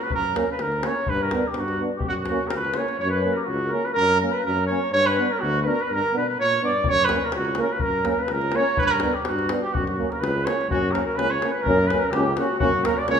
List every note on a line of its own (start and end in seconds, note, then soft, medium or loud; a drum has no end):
0.03 0.12 B4 medium
0.10 0.38 F#2 medium
0.10 0.35 A#4 loud
0.10 davul low medium
0.16 0.36 A#4 medium
0.35 0.45 A#3 medium
0.35 0.45 C#4 medium
0.35 0.49 A#4 medium
0.35 davul high medium
0.52 0.64 B4 medium
0.52 0.63 B4 medium
0.59 0.86 D2 medium
0.59 0.88 A#4 medium
0.59 0.85 A#4 medium
0.59 davul high medium
0.72 davul high soft
0.83 0.94 A#3 medium
0.83 0.93 C#4 medium
0.83 1.11 C#5 medium
0.83 1.10 C#5 loud
0.83 davul high medium
1.07 1.34 G2 loud
1.07 1.24 B4 loud
1.07 1.25 B4 medium
1.07 davul low medium
1.23 1.51 A#4 medium
1.23 1.49 A#4 medium
1.31 1.42 B3 medium
1.31 1.43 D4 medium
1.31 davul high medium
1.47 1.59 G4 medium
1.47 1.61 G4 medium
1.54 1.82 G2 medium
1.54 1.81 F#4 medium
1.54 davul high medium
1.60 1.82 F#4 loud
1.68 davul high soft
1.80 1.90 B3 medium
1.80 1.90 D4 medium
1.96 2.05 G4 medium
2.00 2.30 F#2 medium
2.00 davul low medium
2.08 2.13 F#4 loud
2.08 2.14 F#4 medium
2.15 davul high soft
2.20 2.49 F#4 medium
2.20 2.51 F#4 medium
2.25 davul high medium
2.30 2.39 A#3 medium
2.30 2.39 C#4 medium
2.47 2.55 A#4 medium
2.47 2.56 A#4 medium
2.47 davul high medium
2.53 2.79 C#2 medium
2.53 2.77 B4 medium
2.61 2.82 B4 medium
2.61 davul high soft
2.74 2.86 A#3 medium
2.74 2.86 C#4 soft
2.74 2.98 C#5 medium
2.74 davul high medium
2.81 2.98 C#5 medium
2.88 davul high soft
2.99 3.27 F#2 loud
2.99 3.09 C#5 medium
2.99 3.11 C#5 loud
3.09 3.35 B4 medium
3.09 3.38 B4 medium
3.22 3.34 A#3 medium
3.22 3.32 C#4 medium
3.33 3.43 G4 medium
3.33 3.38 A#4 medium
3.33 3.39 A#4 medium
3.42 3.69 F#4 medium
3.42 3.46 A#4 medium
3.42 3.48 A#4 medium
3.46 3.74 C#2 loud
3.46 3.72 F#4 medium
3.68 3.86 A#4 medium
3.72 3.82 A#3 medium
3.72 3.81 C#4 medium
3.85 3.93 B4 medium
3.85 3.94 B4 medium
3.93 4.23 F#2 loud
3.93 4.17 A#4 medium
3.93 4.18 A#4 loud
4.19 4.31 A#3 medium
4.19 4.29 C#4 medium
4.19 4.35 A#4 medium
4.19 4.32 A#4 medium
4.31 4.43 B4 medium
4.31 4.45 B4 medium
4.44 4.72 F#2 loud
4.44 4.66 A#4 loud
4.44 4.66 A#4 medium
4.67 4.80 A#3 medium
4.67 4.79 C#4 medium
4.67 4.90 C#5 medium
4.92 5.19 G2 loud
4.92 5.08 C#5 loud
4.92 5.08 C#5 medium
5.06 5.32 B4 medium
5.06 5.34 B4 loud
5.18 5.27 B3 medium
5.18 5.27 D4 medium
5.31 5.42 A#4 medium
5.31 5.41 A#4 medium
5.39 5.68 D2 loud
5.39 5.61 F#4 medium
5.39 5.62 F#4 loud
5.62 5.74 B3 medium
5.62 5.75 D4 medium
5.62 5.82 A#4 medium
5.62 5.68 B4 medium
5.62 5.67 B4 medium
5.67 5.84 A#4 loud
5.81 5.91 B4 medium
5.81 5.95 B4 loud
5.90 6.03 G2 loud
5.90 6.13 A#4 medium
5.90 6.15 A#4 loud
6.13 6.35 B2 medium
6.13 6.22 B3 medium
6.13 6.24 D4 medium
6.17 6.27 B4 medium
6.28 6.37 B4 medium
6.39 6.60 A#2 medium
6.39 6.60 C#5 medium
6.39 6.61 C#5 loud
6.61 6.84 G2 medium
6.61 6.71 B3 medium
6.61 6.71 D4 medium
6.61 6.90 D5 loud
6.61 6.91 D5 medium
6.84 7.12 F#2 loud
6.84 davul low loud
6.88 7.06 C#5 loud
6.88 7.06 C#5 medium
7.04 7.26 B4 medium
7.04 7.27 B4 loud
7.08 7.18 A#3 medium
7.08 7.21 C#4 medium
7.08 davul high medium
7.25 7.34 A#4 medium
7.25 7.35 A#4 medium
7.32 7.61 C#2 medium
7.32 7.56 F#4 medium
7.32 davul high medium
7.36 7.57 F#4 medium
7.45 davul high soft
7.55 7.67 A#3 medium
7.55 7.68 C#4 medium
7.55 7.74 A#4 medium
7.55 davul high medium
7.62 7.74 A#4 medium
7.72 7.85 B4 medium
7.72 7.82 B4 medium
7.79 8.09 F#2 medium
7.79 8.05 A#4 medium
7.79 8.06 A#4 loud
7.79 davul low medium
8.04 8.14 A#3 medium
8.04 8.14 C#4 medium
8.04 8.20 A#4 medium
8.04 davul high medium
8.08 8.24 A#4 medium
8.19 8.33 B4 medium
8.19 8.34 B4 medium
8.28 8.56 C#2 loud
8.28 8.57 A#4 medium
8.28 davul high medium
8.33 8.57 A#4 loud
8.41 davul high soft
8.52 8.63 A#3 medium
8.52 8.78 C#5 medium
8.52 8.77 C#5 loud
8.52 davul high medium
8.56 8.65 C#4 medium
8.77 9.05 G2 medium
8.77 8.81 B4 loud
8.77 8.83 B4 medium
8.77 8.87 C#5 loud
8.77 davul low loud
8.82 8.88 C#5 medium
8.86 8.92 B4 loud
8.86 8.96 B4 medium
8.91 9.16 A#4 medium
9.00 9.12 B3 medium
9.00 9.11 D4 medium
9.00 davul high medium
9.14 9.26 G4 medium
9.14 9.30 G4 medium
9.24 9.48 F#4 loud
9.24 davul high medium
9.28 9.54 G2 loud
9.28 9.51 F#4 medium
9.39 davul high soft
9.49 9.60 B3 medium
9.49 9.60 D4 medium
9.49 davul high medium
9.62 9.75 G4 medium
9.62 9.79 G4 medium
9.73 10.01 F#2 medium
9.73 9.86 F#4 medium
9.73 davul low loud
9.77 9.88 F#4 medium
9.87 10.12 F#4 medium
9.87 10.14 F#4 medium
9.87 davul high soft
9.98 10.07 A#3 medium
9.98 10.08 C#4 soft
10.10 10.21 A#4 medium
10.10 10.25 A#4 medium
10.10 davul high soft
10.20 10.48 C#2 loud
10.20 10.47 B4 loud
10.20 10.51 B4 medium
10.20 davul high medium
10.45 10.56 A#3 medium
10.45 10.56 C#4 soft
10.45 10.69 C#5 medium
10.45 davul high medium
10.49 10.69 C#5 medium
10.61 davul high soft
10.69 10.95 F#2 loud
10.69 10.80 A#3 medium
10.69 10.79 C#4 medium
10.69 10.95 F#4 medium
10.69 10.93 F#4 loud
10.69 davul low loud
10.92 11.02 A#3 medium
10.92 11.03 C#4 medium
10.92 11.05 A#4 medium
10.92 davul high medium
11.06 11.18 A#4 medium
11.06 11.20 A#4 medium
11.16 11.43 C#2 loud
11.16 11.28 A#3 medium
11.16 11.27 C#4 medium
11.16 11.33 B4 loud
11.16 11.35 B4 medium
11.16 davul high medium
11.31 11.50 C#5 medium
11.31 11.53 C#5 medium
11.42 11.52 A#3 medium
11.42 11.52 C#4 medium
11.42 davul high medium
11.50 11.64 B4 medium
11.50 11.69 B4 medium
11.62 11.91 F#2 loud
11.62 11.75 C#4 medium
11.62 11.89 A#4 medium
11.66 11.76 A#3 medium
11.66 11.90 A#4 medium
11.66 davul low medium
11.87 12.00 C#4 medium
11.87 12.00 B4 medium
11.87 12.07 B4 medium
11.87 davul high medium
11.92 12.01 A#3 medium
11.99 12.13 A#4 medium
12.05 12.15 A#4 medium
12.11 12.38 C#2 loud
12.11 12.24 A#3 medium
12.11 12.35 G4 loud
12.11 12.37 G4 medium
12.11 davul high medium
12.16 12.25 C#4 medium
12.37 12.47 A#3 medium
12.37 12.47 C#4 medium
12.37 12.58 F#4 medium
12.37 12.60 F#4 medium
12.37 davul high medium
12.59 12.86 F#2 loud
12.59 12.71 A#3 medium
12.59 12.69 C#4 medium
12.59 12.87 F#4 loud
12.59 12.87 F#4 medium
12.59 davul low loud
12.84 12.94 A#3 medium
12.84 12.94 C#4 soft
12.84 12.99 A#4 medium
12.84 13.01 A#4 medium
12.84 davul high medium
12.98 13.08 D5 medium
12.98 13.09 D5 medium
13.08 13.20 C#2 loud
13.08 13.19 A#3 medium
13.08 13.19 C#4 medium
13.08 13.20 C#5 medium
13.08 13.20 C#5 loud
13.08 davul high medium